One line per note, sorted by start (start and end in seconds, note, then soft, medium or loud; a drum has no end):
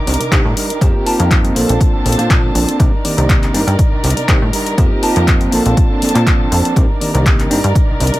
0.00 0.80 A#4 medium
0.00 0.80 D6 medium
0.06 0.18 C2 medium
0.06 0.20 G3 medium
0.06 0.20 D4 medium
0.06 0.20 D#4 medium
0.06 0.18 A#4 medium
0.06 open hi-hat loud
0.14 closed hi-hat medium
0.19 0.30 C3 soft
0.19 0.31 D4 soft
0.19 0.31 D#4 soft
0.19 0.31 A#4 medium
0.19 closed hi-hat medium
0.31 0.42 C3 medium
0.31 0.55 G3 medium
0.31 0.42 A#3 loud
0.31 0.42 C4 medium
0.31 0.42 D4 medium
0.31 0.56 D4 medium
0.31 0.42 D#4 medium
0.31 0.57 D#4 medium
0.31 0.42 G4 loud
0.31 kick loud
0.31 clap loud
0.31 closed hi-hat medium
0.45 0.54 A2 medium
0.56 0.70 G3 medium
0.56 0.70 D4 medium
0.56 0.70 D#4 medium
0.56 0.68 A#4 medium
0.56 open hi-hat loud
0.69 0.81 D4 soft
0.69 0.81 D#4 soft
0.69 0.81 A#4 soft
0.69 closed hi-hat medium
0.81 0.92 F2 loud
0.81 0.94 G3 medium
0.81 1.03 A#3 medium
0.81 1.03 C4 medium
0.81 0.95 C4 medium
0.81 1.03 D#4 medium
0.81 0.95 D#4 medium
0.81 1.04 F4 medium
0.81 1.55 G4 medium
0.81 1.04 G4 medium
0.81 0.93 A#4 loud
0.81 kick loud
0.81 closed hi-hat medium
0.94 1.21 C4 soft
0.94 1.20 D#4 medium
0.94 1.18 A#4 medium
1.06 1.53 A#3 medium
1.06 1.53 C4 medium
1.06 1.53 D#4 medium
1.06 1.53 F4 medium
1.06 1.53 A5 medium
1.06 open hi-hat loud
1.19 1.52 F2 loud
1.19 1.30 C4 soft
1.19 1.31 D#4 medium
1.19 1.31 A#4 medium
1.19 closed hi-hat soft
1.31 1.55 G3 medium
1.31 1.57 A#4 loud
1.31 kick loud
1.31 clap loud
1.31 closed hi-hat medium
1.45 closed hi-hat soft
1.55 1.67 A#1 soft
1.55 1.69 F3 medium
1.55 2.15 A#3 medium
1.55 2.15 C4 medium
1.55 1.69 C4 medium
1.55 2.15 D4 medium
1.55 2.79 D4 medium
1.55 1.69 D4 medium
1.55 2.16 F4 medium
1.55 2.16 A4 loud
1.55 1.67 A4 medium
1.55 2.79 C5 medium
1.55 2.79 A5 medium
1.55 open hi-hat loud
1.68 1.78 A#1 medium
1.68 1.95 C4 medium
1.68 1.94 D4 medium
1.68 1.92 A4 medium
1.68 closed hi-hat medium
1.81 kick loud
1.81 closed hi-hat medium
1.93 2.03 A#1 soft
1.93 2.05 C4 soft
1.93 2.06 D4 medium
1.93 2.05 A4 medium
2.05 2.16 A#1 medium
2.05 2.18 F3 medium
2.05 2.19 C4 medium
2.05 2.19 D4 medium
2.05 2.17 A4 medium
2.05 open hi-hat loud
2.12 closed hi-hat medium
2.18 2.28 A#2 soft
2.18 2.77 A#3 medium
2.18 2.77 C4 medium
2.18 2.30 C4 soft
2.18 2.77 D4 medium
2.18 2.31 D4 medium
2.18 2.77 F4 medium
2.18 2.30 A4 medium
2.18 closed hi-hat medium
2.30 2.50 A#2 medium
2.30 2.53 F3 medium
2.30 2.54 C4 medium
2.30 2.56 D4 medium
2.30 2.56 A4 loud
2.30 kick loud
2.30 clap loud
2.30 closed hi-hat medium
2.54 2.65 A#1 medium
2.54 2.68 F3 medium
2.54 2.69 C4 medium
2.54 2.68 D4 medium
2.54 2.66 A4 medium
2.54 open hi-hat loud
2.68 2.80 C4 soft
2.68 2.79 D4 soft
2.68 2.80 A4 medium
2.68 closed hi-hat medium
2.79 2.90 C2 loud
2.79 2.93 G3 medium
2.79 2.90 A#3 medium
2.79 2.90 C4 medium
2.79 2.90 D4 medium
2.79 2.93 D4 medium
2.79 2.90 D#4 medium
2.79 2.93 D#4 loud
2.79 2.90 G4 medium
2.79 5.50 A#4 medium
2.79 2.91 A#4 loud
2.79 4.77 D5 medium
2.79 kick loud
2.79 closed hi-hat medium
2.92 3.19 D4 soft
2.92 3.18 D#4 medium
2.92 3.16 A#4 medium
3.04 3.52 D#3 medium
3.04 3.51 A#3 medium
3.04 3.51 C4 medium
3.04 3.52 G4 medium
3.04 3.51 D5 medium
3.04 open hi-hat loud
3.17 3.50 C2 loud
3.17 3.29 D4 medium
3.17 3.29 D#4 medium
3.17 3.29 A#4 medium
3.17 closed hi-hat soft
3.29 3.52 G3 medium
3.29 3.54 D4 medium
3.29 3.55 D#4 loud
3.29 3.55 A#4 medium
3.29 kick loud
3.29 clap loud
3.29 closed hi-hat medium
3.43 clap soft
3.43 closed hi-hat soft
3.54 3.65 G2 soft
3.54 3.67 G3 medium
3.54 3.60 A#3 medium
3.54 3.61 C4 medium
3.54 3.61 D4 medium
3.54 3.68 D4 medium
3.54 3.61 D#4 medium
3.54 3.67 D#4 medium
3.54 3.61 G4 loud
3.54 3.66 A#4 medium
3.54 open hi-hat loud
3.67 3.76 G2 medium
3.67 3.93 D4 soft
3.67 3.92 D#4 medium
3.67 3.91 A#4 medium
3.67 closed hi-hat medium
3.79 kick loud
3.79 closed hi-hat medium
3.92 4.01 C2 soft
3.92 4.03 D4 soft
3.92 4.04 D#4 medium
3.92 4.04 A#4 medium
4.03 4.14 C2 medium
4.03 4.17 G3 medium
4.03 4.17 D4 medium
4.03 4.17 D#4 medium
4.03 4.15 A#4 medium
4.03 open hi-hat loud
4.10 closed hi-hat medium
4.17 4.26 C3 soft
4.17 4.28 D4 soft
4.17 4.29 D#4 medium
4.17 4.28 A#4 medium
4.17 closed hi-hat soft
4.28 4.39 C3 medium
4.28 4.51 G3 medium
4.28 4.39 A#3 medium
4.28 4.39 C4 medium
4.28 4.39 D4 medium
4.28 4.53 D4 medium
4.28 4.39 D#4 medium
4.28 4.54 D#4 medium
4.28 4.39 G4 loud
4.28 4.54 A#4 medium
4.28 kick loud
4.28 clap loud
4.28 closed hi-hat medium
4.42 4.51 A2 medium
4.53 4.76 G3 medium
4.53 4.78 D4 medium
4.53 4.78 D#4 medium
4.53 4.79 A#4 medium
4.53 open hi-hat loud
4.67 closed hi-hat medium
4.78 4.88 F2 loud
4.78 4.91 G3 medium
4.78 5.00 A#3 medium
4.78 5.00 C4 medium
4.78 4.92 C4 medium
4.78 5.00 D#4 medium
4.78 4.91 D#4 loud
4.78 5.00 F4 medium
4.78 5.00 G4 medium
4.78 5.52 G4 medium
4.78 4.90 A#4 medium
4.78 5.52 D#5 medium
4.78 kick loud
4.78 closed hi-hat medium
4.91 5.17 C4 soft
4.91 5.16 D#4 medium
4.91 5.15 A#4 medium
5.03 5.50 A#3 medium
5.03 5.50 C4 medium
5.03 5.50 D#4 medium
5.03 5.50 F4 medium
5.03 5.50 A5 medium
5.03 open hi-hat loud
5.16 5.49 F2 loud
5.16 5.27 C4 medium
5.16 5.28 D#4 medium
5.16 5.28 A#4 medium
5.16 closed hi-hat soft
5.27 5.52 G3 medium
5.27 kick loud
5.27 clap loud
5.27 closed hi-hat medium
5.41 closed hi-hat soft
5.51 5.63 A#1 soft
5.51 5.65 F3 medium
5.51 6.12 A#3 medium
5.51 6.12 C4 medium
5.51 5.66 C4 medium
5.51 6.75 D4 medium
5.51 6.12 D4 medium
5.51 5.66 D4 medium
5.51 6.12 F4 medium
5.51 6.12 A4 loud
5.51 5.64 A4 medium
5.51 6.75 C5 medium
5.51 6.75 A5 medium
5.51 open hi-hat loud
5.65 5.75 A#1 medium
5.65 5.92 C4 medium
5.65 5.90 D4 medium
5.65 5.89 A4 medium
5.65 closed hi-hat soft
5.77 kick loud
5.77 closed hi-hat medium
5.90 6.02 C4 soft
5.90 6.03 D4 medium
5.90 6.02 A4 medium
6.02 6.15 F3 medium
6.02 6.16 C4 medium
6.02 6.15 D4 medium
6.02 6.14 A4 medium
6.02 open hi-hat loud
6.09 closed hi-hat medium
6.14 6.48 A#2 medium
6.14 6.73 A#3 medium
6.14 6.73 C4 medium
6.14 6.26 C4 soft
6.14 6.74 D4 medium
6.14 6.27 D4 medium
6.14 6.74 F4 medium
6.14 6.27 A4 medium
6.14 clap soft
6.14 closed hi-hat soft
6.26 6.50 F3 medium
6.26 6.52 D4 medium
6.26 6.52 A4 medium
6.26 kick loud
6.26 clap loud
6.26 closed hi-hat medium
6.51 6.62 F2 medium
6.51 6.75 F3 medium
6.51 6.76 C4 medium
6.51 6.76 D4 medium
6.51 6.78 A4 medium
6.51 open hi-hat loud
6.65 closed hi-hat soft
6.76 6.87 C2 loud
6.76 6.89 G3 medium
6.76 6.87 A#3 medium
6.76 6.87 C4 medium
6.76 6.87 D4 medium
6.76 6.90 D4 medium
6.76 6.87 D#4 medium
6.76 6.89 D#4 medium
6.76 6.87 G4 loud
6.76 8.20 A#4 medium
6.76 6.87 A#4 loud
6.76 8.20 D5 medium
6.76 kick loud
6.76 closed hi-hat medium
6.89 7.16 D4 soft
6.89 7.14 D#4 medium
6.89 7.13 A#4 medium
7.01 7.48 D#3 medium
7.01 7.48 A#3 medium
7.01 7.48 C4 medium
7.01 7.48 G4 medium
7.01 7.48 D5 medium
7.01 open hi-hat medium
7.14 7.47 C2 loud
7.14 7.25 D4 medium
7.14 7.26 D#4 medium
7.14 7.26 A#4 medium
7.14 closed hi-hat soft
7.26 7.49 G3 medium
7.26 7.51 D#4 medium
7.26 kick loud
7.26 clap loud
7.26 closed hi-hat medium
7.40 clap soft
7.40 closed hi-hat soft
7.50 7.61 G2 soft
7.50 7.64 G3 medium
7.50 7.57 A#3 medium
7.50 7.57 C4 medium
7.50 7.57 D4 medium
7.50 7.64 D4 medium
7.50 7.57 D#4 medium
7.50 7.64 D#4 medium
7.50 7.57 G4 loud
7.50 7.62 A#4 medium
7.50 open hi-hat loud
7.63 7.73 G2 medium
7.63 7.90 D4 soft
7.63 7.88 D#4 medium
7.63 7.87 A#4 medium
7.63 closed hi-hat soft
7.75 kick loud
7.75 closed hi-hat medium
7.88 7.98 C2 soft
7.88 8.00 D4 medium
7.88 8.01 D#4 medium
7.88 8.00 A#4 medium
7.99 8.11 C2 medium
7.99 8.13 G3 medium
7.99 8.14 D4 medium
7.99 8.13 D#4 medium
7.99 8.11 A#4 medium
7.99 open hi-hat loud
8.07 closed hi-hat medium
8.12 8.20 C3 soft
8.12 8.20 D4 soft
8.12 8.20 D#4 medium
8.12 8.20 A#4 medium
8.12 closed hi-hat soft